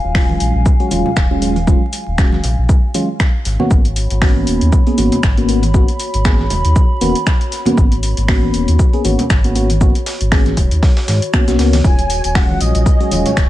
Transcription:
Already playing: ambient pad F5 G#5
0.04 sub bass D#1
0.15 fm electric piano F#3 G#3 C#4 F4, finger snap, kick, snare, open hi-hat
0.29 high conga
0.40 sub bass A#1, open hi-hat, shaker
0.55 sub bass A#1
0.66 kick, shaker
0.80 fm electric piano F#3 G#3 C#4 F#4, closed hi-hat
0.91 sub bass D#1, fm electric piano F#3 G#3 C#4 F4, open hi-hat, high conga, shaker
1.06 low conga
1.16 sub bass D#1, finger snap, kick, snare, shaker
1.31 fm electric piano F#3 G#3 C#4 F4
1.42 fm electric piano F#3 G#3 C#4 F4, open hi-hat, shaker
1.56 closed hi-hat, high conga
1.67 fm electric piano F#3 G#3 C#4 F4, kick, shaker
1.93 open hi-hat, shaker
2.07 sub bass D#1
2.18 fm electric piano F#3 G#3 C#4 F#4, finger snap, kick, snare, shaker
2.32 snare, high conga
2.44 sub bass A#1, open hi-hat, low conga, shaker
2.58 sub bass A#1
2.69 kick, shaker
2.94 fm electric piano F#3 G#3 C#4 F4, open hi-hat, high conga, shaker
3.20 finger snap, kick, snare, shaker
3.45 sub bass G#1, ambient pad F#4, snare, open hi-hat, shaker
3.59 fm electric piano A#3 B3 C#4 F#4, ambient pad C#5, high conga, low conga
3.71 sub bass G#1, fm electric piano A#3 B3 C#4, ambient pad B5, kick, shaker
3.85 closed hi-hat
3.96 open hi-hat, shaker
4.10 sub bass G#1, closed hi-hat
4.21 fm electric piano A#3 B3 C#4 F#4, finger snap, kick, snare, open hi-hat
4.37 high conga
4.47 sub bass D#1, open hi-hat, shaker
4.61 sub bass D#2, closed hi-hat
4.72 kick, shaker
4.87 fm electric piano A#3 B3 C#4 G#4, closed hi-hat
4.98 sub bass G#1, fm electric piano A#3 B3 C#4 F#4, open hi-hat, high conga, shaker
5.12 closed hi-hat, low conga
5.23 sub bass G#1, finger snap, kick, snare, shaker
5.37 fm electric piano A#3 B3 C#4 F#4, closed hi-hat
5.49 fm electric piano A#3 B3 C#4 F#4, open hi-hat, shaker
5.63 closed hi-hat, high conga
5.74 fm electric piano A#3 B3 C#4 F#4, kick, shaker
5.88 closed hi-hat
6.00 open hi-hat, shaker
6.14 sub bass G#1, closed hi-hat
6.25 fm electric piano A#3 B3 C#4 G#4, finger snap, kick, snare, shaker
6.39 snare, high conga
6.50 sub bass D#1, open hi-hat, low conga, shaker
6.65 sub bass D#2, closed hi-hat
6.76 kick, shaker
7.01 sub bass D#1, fm electric piano A#3 B3 C#4 F#4, open hi-hat, high conga, shaker
7.15 closed hi-hat
7.27 finger snap, kick, snare, shaker
7.41 closed hi-hat
7.52 snare, open hi-hat, shaker
7.65 fm electric piano A#3 B3 C#4 F#4, closed hi-hat, high conga, low conga
7.77 sub bass G#1, fm electric piano A#3 B3 C#4, kick, shaker
7.92 closed hi-hat
8.03 open hi-hat, shaker
8.17 sub bass G#1, closed hi-hat
8.28 fm electric piano A#3 B3 C#4 F#4, finger snap, kick, snare, open hi-hat
8.42 high conga
8.54 sub bass D#1, open hi-hat, shaker
8.68 sub bass D#2, closed hi-hat
8.79 kick, shaker
8.93 fm electric piano A#3 B3 C#4 G#4, closed hi-hat
9.04 sub bass G#1, fm electric piano A#3 B3 C#4 F#4, open hi-hat, high conga, shaker
9.19 closed hi-hat, low conga
9.30 sub bass G#1, finger snap, kick, snare, shaker
9.44 fm electric piano A#3 B3 C#4 F#4, closed hi-hat
9.55 fm electric piano A#3 B3 C#4 F#4, open hi-hat, shaker
9.70 closed hi-hat, high conga
9.81 fm electric piano A#3 B3 C#4 F#4, kick, shaker
9.95 closed hi-hat
10.06 snare, open hi-hat
10.21 sub bass G#1, closed hi-hat
10.32 fm electric piano A#3 B3 C#4 G#4, finger snap, kick, snare, open hi-hat
10.46 snare, closed hi-hat, high conga
10.57 sub bass D#1, kick, open hi-hat, low conga, shaker
10.71 sub bass D#2, closed hi-hat
10.83 kick, snare, open hi-hat
10.97 snare, open hi-hat
11.08 sub bass G#2, snare, open hi-hat, high conga
11.22 closed hi-hat
11.33 fm electric piano A#3 B3 C#4 F#4, finger snap, kick, shaker
11.48 sub bass B1, fm electric piano A#3 B3 C#4 F#4, snare, closed hi-hat, shaker
11.59 sub bass C#2, fm electric piano A#3 B3 C#4 F#4, snare, open hi-hat
11.73 snare, closed hi-hat, open hi-hat, high conga, low conga
11.84 sub bass D#1, fm electric piano F#3 G#3 C#4 F4, soft synth lead G#5, kick, tambourine, shaker
11.99 closed hi-hat
12.09 ambient pad D#5, open hi-hat, tambourine, shaker
12.23 sub bass D#1, ambient pad G#5, closed hi-hat, tambourine
12.35 fm electric piano F#3 G#3 C#4 F4, soft synth lead F#5, finger snap, kick, snare, open hi-hat, tambourine
12.49 soft synth lead F#5, high conga
12.61 sub bass A#1, soft synth lead D#5, open hi-hat, tambourine, shaker
12.75 sub bass A#1, closed hi-hat, tambourine
12.86 kick, tambourine, shaker
13.00 fm electric piano F#3 G#3 C#4 F#4, closed hi-hat
13.11 sub bass D#1, fm electric piano F#3 G#3 C#4 F4, open hi-hat, tambourine, high conga, shaker
13.26 soft synth lead C#5, closed hi-hat, tambourine, low conga
13.37 sub bass D#1, finger snap, kick, snare, tambourine, shaker

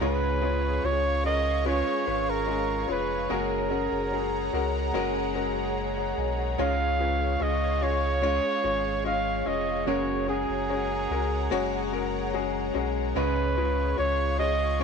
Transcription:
Already playing: analog synth pad G#4 C#5
0.00 sub bass C#2, grand piano G#2 G#3 C#4 F4 C#5, steel-string acoustic guitar C#3 G#3 C#4 F4 G#4, flugelhorn B4, analog synth pad F5 C#6
0.42 grand piano G#3 C#4 F4 C#5, steel-string acoustic guitar C#4 F4 G#4
0.84 sub bass C#2, grand piano G#3 C#4 F4 C#5, flugelhorn C#5
1.24 grand piano G#3 C#4 F4 A#4, flugelhorn D#5
1.65 steel-string acoustic guitar G#3 C#4 F4, grand piano G#3 C#4 F4 B4, flugelhorn C#5
1.69 steel-string acoustic guitar G#4
2.06 sub bass G#1, grand piano G#3 C#4 F4 B4
2.30 flugelhorn A#4
2.46 grand piano G#3 C#4 F4 D#5
2.87 sub bass F1, grand piano G#3 C#4 F4 C#5, flugelhorn B4
3.29 sub bass F#1, grand piano C#3 G#3 C#4 F#4 A#4, steel-string acoustic guitar F#3 A#3 C#4 F#4 G#4, flugelhorn A#4, analog synth pad F#5 A#5
3.70 grand piano G#3 C#4 F#4 A#4, steel-string acoustic guitar C#4 F#4 G#4
3.91 sub bass F#1
4.12 grand piano G#3 C#4 F#4 G#4
4.53 sub bass C#2, grand piano G#3 C#4 F#4 A#4
4.93 sub bass F#1, grand piano G#3 C#4 F#4 A#4, steel-string acoustic guitar A#3 C#4 F#4
4.97 steel-string acoustic guitar G#4
5.35 grand piano G#3 C#4 F#4 A#4
5.97 grand piano C#5 F#5
6.17 sub bass B1, grand piano D#5 G#5
6.38 grand piano C#5 F#5
6.58 sub bass C#2, grand piano G#2 G#3 C#4 F4 C#5, steel-string acoustic guitar C#3 G#3 C#4 F4 G#4, analog synth pad F5 C#6, flugelhorn F5
6.99 grand piano G#3 C#4 F4 B4, steel-string acoustic guitar C#4 F4 G#4
7.40 sub bass C#2, grand piano G#3 C#4 F4 C#5, flugelhorn D#5
7.81 grand piano G#3 C#4 F4 D#5, flugelhorn C#5
8.22 steel-string acoustic guitar G#3 C#4 F4, grand piano G#3 C#4 F4 C#5
8.26 steel-string acoustic guitar G#4
8.63 sub bass G#1, grand piano G#3 C#4 F4 C#5
9.04 grand piano G#3 C#4 F4 D#5, flugelhorn F5
9.45 sub bass F1, grand piano G#3 C#4 F4 C#5, flugelhorn D#5
9.86 sub bass F#1, grand piano C#3 G#3 C#4 F#4 A#4, steel-string acoustic guitar F#3 A#3 C#4 F#4 G#4, flugelhorn C#5, analog synth pad F#5 A#5
10.27 grand piano G#3 C#4 F#4 G#4, steel-string acoustic guitar C#4 F#4 G#4, flugelhorn G#4
10.49 sub bass F#1
10.69 grand piano G#3 C#4 F#4 C#5
11.10 sub bass C#2, grand piano G#3 C#4 F#4 A#4
11.50 sub bass F#1, grand piano G#3 C#4 F#4 C#5, steel-string acoustic guitar A#3 C#4 F#4 G#4
11.93 grand piano G#3 C#4 F#4 A#4
12.33 grand piano G#3 C#4 F#4 G#4
12.74 sub bass B1, grand piano G#3 C#4 F#4 G#4
13.15 sub bass C#2, grand piano G#2 G#3 C#4 F4 C#5, steel-string acoustic guitar C#3 G#3 C#4 F4 G#4, analog synth pad G#4 F5 C#6, flugelhorn B4
13.56 grand piano G#3 C#4 F4 B4, steel-string acoustic guitar C#4 F4 G#4
13.97 sub bass C#2, grand piano G#3 C#4 F4 C#5, flugelhorn C#5
14.39 grand piano G#3 C#4 F4 C#5, flugelhorn D#5
14.79 steel-string acoustic guitar G#3, grand piano G#3 C#4 F4, flugelhorn C#5

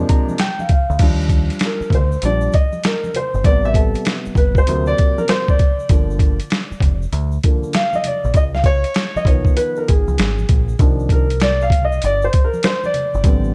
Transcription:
Already playing: grand piano C3 F3 G#3 A#3 D4
0.09 grand piano A#5, kick, closed hi-hat, shaker
0.29 high conga, shaker
0.38 grand piano G5, snare, closed hi-hat, shaker
0.59 grand piano F5, high conga, shaker
0.69 grand piano F5, kick, closed hi-hat, high conga, low conga, shaker
0.90 picked electric bass D2, shaker
0.99 picked electric bass D#2, grand piano F3 G3 D4, kick, closed hi-hat, crash, shaker
1.21 shaker
1.29 kick, closed hi-hat, shaker
1.50 closed hi-hat, shaker
1.59 snare, closed hi-hat, shaker
1.65 grand piano A#4
1.81 muted picked electric bass stroke, shaker
1.90 picked electric bass D2, kick, closed hi-hat, low conga, shaker
1.95 grand piano C5
2.12 shaker
2.22 picked electric bass A#1, grand piano F3 G3 D4 D5, closed hi-hat, shaker
2.41 shaker
2.52 grand piano D#5, kick, closed hi-hat, shaker
2.73 high conga, shaker
2.83 grand piano A#4, snare, closed hi-hat, shaker
3.04 high conga, shaker
3.14 grand piano C5, closed hi-hat, low conga, shaker
3.34 picked electric bass G1, shaker
3.44 picked electric bass A1, grand piano C3 G3 B3 D5, kick, closed hi-hat, shaker
3.65 grand piano E5, shaker
3.74 grand piano A4, kick, closed hi-hat, shaker
3.94 closed hi-hat, shaker
4.05 snare, closed hi-hat, shaker
4.25 muted picked electric bass stroke, shaker
4.35 picked electric bass G1, grand piano B4, kick, closed hi-hat, low conga, shaker
4.55 grand piano C5, kick, shaker
4.67 picked electric bass D2, grand piano C3 F#3 A#3, closed hi-hat, shaker
4.86 grand piano D5, shaker
4.98 kick, closed hi-hat, shaker
5.18 grand piano A#4, high conga, shaker
5.28 grand piano C5, snare, closed hi-hat, shaker
5.48 grand piano D5, kick, high conga, shaker
5.59 kick, closed hi-hat, low conga, shaker
5.79 shaker
5.89 picked electric bass G1, grand piano D3 F3 A#3, kick, closed hi-hat, shaker
6.10 shaker
6.19 kick, closed hi-hat, shaker
6.40 closed hi-hat, shaker
6.50 snare, closed hi-hat, shaker
6.72 muted picked electric bass stroke, shaker
6.80 picked electric bass F1, kick, closed hi-hat, low conga, shaker
7.02 shaker
7.13 picked electric bass D2, closed hi-hat, shaker
7.32 shaker
7.43 grand piano D3 F3 A#3, kick, closed hi-hat, shaker
7.63 high conga, shaker
7.73 grand piano F5, snare, closed hi-hat, shaker
7.93 grand piano D#5, high conga, shaker
8.04 grand piano D5, closed hi-hat, low conga, shaker
8.24 picked electric bass A#1, shaker
8.34 picked electric bass C#2, grand piano D#5, kick, closed hi-hat, shaker
8.55 grand piano F5, snare, shaker
8.64 grand piano C#5, kick, closed hi-hat, shaker
8.84 closed hi-hat, shaker
8.94 snare, closed hi-hat, shaker
9.16 grand piano D#5, muted picked electric bass stroke, high conga, shaker
9.25 picked electric bass B1, grand piano D#3 F3 B3 C#5, kick, closed hi-hat, low conga, shaker
9.45 kick, shaker
9.57 grand piano B4, closed hi-hat, high conga, shaker
9.76 grand piano A#4, shaker
9.88 picked electric bass G#1, grand piano G#4, kick, closed hi-hat, shaker
10.08 picked electric bass C#2, high conga, shaker
10.18 picked electric bass G#1, snare, closed hi-hat, shaker
10.38 high conga, shaker
10.49 picked electric bass A#1, kick, closed hi-hat, high conga, low conga, shaker
10.69 shaker
10.79 picked electric bass C2, grand piano D#3 F3 A#3 D4, kick, closed hi-hat, shaker
11.00 shaker
11.09 grand piano A#4, kick, closed hi-hat, shaker
11.30 closed hi-hat, shaker
11.40 grand piano D5, snare, closed hi-hat, shaker
11.61 grand piano F5, shaker
11.70 kick, closed hi-hat, low conga, shaker
11.85 grand piano D#5
11.92 shaker
12.02 picked electric bass G1, grand piano D5, closed hi-hat, shaker
12.22 grand piano C5, shaker
12.33 kick, closed hi-hat, shaker
12.44 grand piano A#4
12.54 high conga, shaker
12.63 grand piano C5, snare, closed hi-hat, shaker
12.84 grand piano D5, high conga, shaker
12.94 closed hi-hat, low conga, shaker
13.14 picked electric bass G1, shaker
13.24 picked electric bass A1, grand piano D3 G3 B3 C4, kick, closed hi-hat, shaker
13.44 shaker

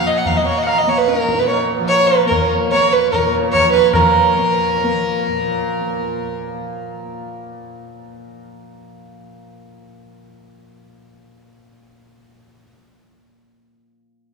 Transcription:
Already playing: tanpura A#2 F3 A#3
0.07 violin D#5
0.17 violin F#5
0.25 violin F5, tabla tin, tabla ge
0.37 violin D#5
0.42 tanpura A#3, tabla na
0.47 violin C#5
0.57 violin D#5
0.63 violin F#5
0.67 violin F5, tabla na
0.78 violin D#5
0.87 tanpura A#3, violin C#5
0.98 violin B4
1.08 violin A#4, tabla te
1.19 tabla te
1.29 tabla ke
1.34 tanpura A#2
1.39 violin B4, tabla te
1.49 violin C#5, tabla na
1.79 tanpura F3
1.89 violin C#5, tabla tin
2.07 violin B4, tabla na
2.26 tanpura A#3, violin A#4
2.31 tabla na, tabla ge
2.72 tanpura A#3, violin C#5, tabla na
2.93 violin B4
3.12 violin A#4, tabla na, tabla ge
3.17 tanpura A#2
3.33 tabla te
3.52 violin C#5, tabla na, tabla ge
3.64 tanpura F3
3.73 violin B4, tabla te
3.94 tanpura F3, violin A#4, tabla na, tabla ge
4.38 tanpura A#3
4.84 tanpura A#3
5.29 tanpura A#2

